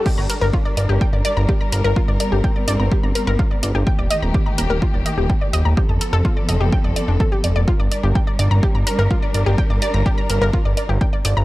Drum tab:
CC |x-------|--------|--------|--------|
HH |-x-x-x-x|-x-x-x-x|-x-x-x-x|-x-x-x-x|
BD |o-o-o-o-|o-o-o-o-|o-o-o-o-|o-o-o-o-|

CC |--------|--------|
HH |-x-x-x-x|-x-x-x-x|
BD |o-o-o-o-|o-o-o-o-|